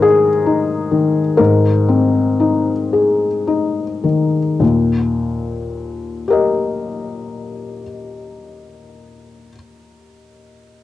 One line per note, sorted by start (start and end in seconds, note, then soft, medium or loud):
0.00 1.34 G#2 medium
0.00 0.91 D#3 soft
0.00 0.29 D#4 soft
0.00 1.37 G#4 medium
0.00 1.37 A#4 medium
0.00 1.42 C5 medium
0.46 1.19 D#4 soft
0.91 1.68 D#3 soft
1.37 4.57 G#2 soft
1.37 4.04 A#4 medium
1.88 2.71 C4 soft
2.40 3.25 D#4 soft
2.93 3.81 G#4 soft
3.47 4.39 D#4 soft
4.04 4.61 D#3 soft
4.60 7.82 D#2 soft
4.60 7.82 A#2 soft
6.28 9.50 G4 soft
6.28 9.52 A#4 soft
6.32 9.54 D#5 soft